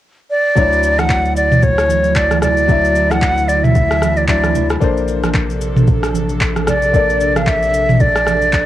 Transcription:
0.31 flute D5
0.55 analog synth bass D2, analog synth pad D3 F#3 E4, grand piano F#3 D4 E4 C#5, kick, low conga, shaker
0.72 shaker
0.83 shaker
0.99 flute F#5, cross-stick, high conga, shaker
1.09 kick, clap, shaker
1.25 shaker
1.36 flute D5, shaker
1.51 mid tom, high conga, shaker
1.62 flute C#5, kick, low conga, shaker
1.78 cross-stick, shaker
1.89 high conga, shaker
2.04 high conga, shaker
2.15 flute D5, kick, clap, shaker
2.31 cross-stick, high conga, shaker
2.42 flute D5, cross-stick, low conga, shaker
2.57 shaker
2.68 grand piano F#3 D4 E4 E5, kick, low conga, shaker
2.85 shaker
2.95 shaker
3.11 flute F#5, cross-stick, high conga, shaker
3.22 kick, clap, shaker
3.38 shaker
3.48 flute D5, shaker
3.64 flute E5, mid tom, high conga, shaker
3.75 kick, low conga, shaker
3.91 cross-stick, shaker
4.02 cross-stick, high conga, shaker
4.17 flute D5, high conga, shaker
4.28 grand piano F#3 D4 E4 E5, flute D5, kick, clap, shaker
4.44 cross-stick, high conga, shaker
4.55 low conga, shaker
4.70 cross-stick, shaker
4.80 analog synth bass A#1, analog synth pad C3 D4 A4, grand piano A#3 D4 A4 C5, kick, low conga, shaker
4.97 shaker
5.08 shaker
5.24 cross-stick, high conga, shaker
5.34 kick, clap, shaker
5.50 shaker
5.61 shaker
5.77 mid tom, high conga, shaker
5.88 kick, low conga, shaker
6.03 cross-stick, shaker
6.14 high conga, shaker
6.29 shaker
6.41 kick, clap, shaker
6.56 cross-stick, high conga, shaker
6.67 flute D5, cross-stick, low conga, shaker
6.82 shaker
6.93 grand piano A#3 D4 A4 D5, kick, low conga, shaker
7.10 shaker
7.21 shaker
7.36 flute F5, cross-stick, high conga, shaker
7.47 flute E5, kick, clap, shaker
7.62 shaker
7.74 shaker
7.89 mid tom, high conga, shaker
8.00 flute D5, kick, low conga, shaker
8.15 cross-stick, shaker
8.27 cross-stick, high conga, shaker
8.41 high conga, shaker
8.53 kick, clap, shaker

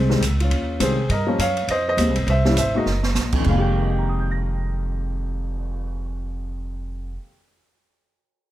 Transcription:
Already playing: upright bass C2
0.09 grand piano D#3 G3 G#3 C4, snare
0.21 upright bass C#2, kick, hi-hat pedal, ride
0.40 grand piano F4, ride
0.44 grand piano C#4
0.50 upright bass D#2, kick, ride
0.80 upright bass C2, grand piano D#3 G3 G#3 C4 G#4 C5, kick, hi-hat pedal, ride
1.09 upright bass G2, grand piano A#4 D#5, kick, ride
1.27 grand piano F3 G3 A#3 C#4
1.38 upright bass F#2, grand piano C#5 F5, kick, hi-hat pedal, ride
1.57 ride
1.68 upright bass F2, grand piano C5 D#5, kick, ride
1.88 grand piano C5 D#5
1.97 upright bass D#2, grand piano G3 G#3 A#3 C4, kick, hi-hat pedal, ride
2.08 upright bass C2
2.16 upright bass G#1, ride
2.27 upright bass C2, grand piano C5 E5, kick, ride
2.45 grand piano G3 A#3 C#4 E4, snare
2.56 upright bass G#1, grand piano E5, kick, hi-hat pedal, ride
2.60 grand piano C5
2.75 grand piano G#3 A#3 D#4 F#4 D#5
2.79 grand piano A#4
2.86 upright bass F#1, snare
3.03 snare
3.15 upright bass A#1, snare, hi-hat pedal
3.32 grand piano F2, kick, crash
3.40 grand piano D#3
3.44 upright bass F1, grand piano G#3, kick, crash
3.49 grand piano A#3 F5
3.58 grand piano G4
3.63 cymbal swell
3.75 grand piano A#4
3.82 grand piano D#5
3.90 grand piano G5
3.99 grand piano A#5
4.09 grand piano D#6
4.20 grand piano G6
4.31 grand piano A#6

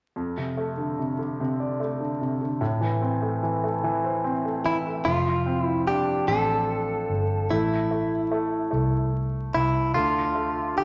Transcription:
0.16 grand piano F2
0.37 grand piano C3
0.57 grand piano A3
0.77 grand piano D3
0.99 grand piano C3
1.19 grand piano D3
1.40 grand piano C3
1.60 grand piano D5
1.80 grand piano A3
2.00 grand piano D3
2.21 grand piano C3
2.41 grand piano D3
2.61 grand piano A2
2.81 grand piano E3
3.02 grand piano C4
3.22 grand piano A3
3.43 grand piano E3
3.64 grand piano A3
3.84 grand piano E3
4.04 grand piano C5
4.24 grand piano C4
4.45 grand piano A3
4.64 grand piano E3, clean electric guitar E4
4.86 grand piano A3
5.05 fingered electric bass F1, grand piano F3, clean electric guitar F4
5.46 grand piano C4
5.63 clean electric guitar E4
5.87 grand piano D4, clean electric guitar G4
6.28 fingered electric bass A1, grand piano C4, clean electric guitar A4
7.10 fingered electric bass G1
7.50 fingered electric bass A1, grand piano A3, clean electric guitar E4
7.91 grand piano A3
8.31 grand piano A3
8.71 fingered electric bass C2, grand piano A3
9.54 fingered electric bass C2, clean electric guitar E4
9.94 fingered electric bass D2, grand piano D3, clean electric guitar F4
10.35 grand piano A3
10.76 grand piano D3, clean electric guitar G4

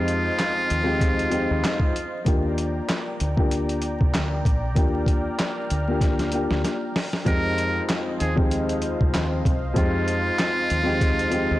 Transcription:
Already playing: fingered electric bass F2, upright piano F2 G#3 C4 D#4 G4, muted trumpet F4, analog synth pad C5 D#5 F5
0.08 closed hi-hat
0.39 snare, clap, closed hi-hat
0.70 fingered electric bass D#2, closed hi-hat
0.83 upright piano F2 G#3 C4 D#4 G4
1.01 kick, closed hi-hat
1.19 closed hi-hat
1.30 upright piano F2 G#3 C4 D#4 G4, closed hi-hat
1.51 fingered electric bass D#2
1.64 snare, clap, closed hi-hat
1.80 kick
1.96 closed hi-hat
2.24 fingered electric bass D#2, upright piano A#3 D4 F4 G4, analog synth pad D5 G5 A#5, kick, closed hi-hat
2.58 closed hi-hat
2.89 snare, clap, closed hi-hat
3.20 fingered electric bass D2, closed hi-hat
3.36 upright piano A#3 D4 F4 G4, kick
3.51 closed hi-hat
3.69 closed hi-hat
3.82 closed hi-hat
4.01 fingered electric bass C2, kick
4.14 fingered electric bass D2, snare, clap, closed hi-hat
4.45 fingered electric bass A#1, kick, closed hi-hat
4.75 fingered electric bass D#2, upright piano A#3 D4 F4 G4, analog synth pad F6, kick, closed hi-hat
5.06 kick, closed hi-hat
5.39 snare, clap, closed hi-hat
5.70 fingered electric bass D2, closed hi-hat
5.88 upright piano A#3 D4 F4 G4
6.01 kick, snare, closed hi-hat
6.19 snare, closed hi-hat
6.32 upright piano A#3 D4 F4 G4, closed hi-hat
6.51 fingered electric bass D2, snare
6.65 snare, closed hi-hat
6.96 snare, open hi-hat
7.13 snare
7.25 upright piano F2 G#3 C4 D#4 G4, fingered electric bass F2, muted trumpet A#4, analog synth pad C5 D#5 F5, kick, closed hi-hat
7.58 closed hi-hat
7.89 snare, clap, closed hi-hat
8.20 fingered electric bass D#2, muted trumpet G#4, closed hi-hat
8.35 upright piano F2 G#3 C4 D#4 G4, kick
8.51 closed hi-hat
8.69 closed hi-hat
8.82 closed hi-hat
9.01 fingered electric bass C2, kick
9.14 fingered electric bass D#2, snare, clap, closed hi-hat
9.45 fingered electric bass C2, kick, closed hi-hat
9.74 upright piano F2 G#3 C4 D#4 G4, fingered electric bass F2, muted trumpet F4, kick, closed hi-hat
10.08 closed hi-hat
10.38 snare, clap, closed hi-hat
10.70 fingered electric bass D#2, closed hi-hat
10.83 upright piano F2 G#3 C4 D#4 G4
11.01 kick, closed hi-hat
11.19 closed hi-hat
11.30 upright piano F2 G#3 C4 D#4 G4, closed hi-hat
11.51 fingered electric bass D#2

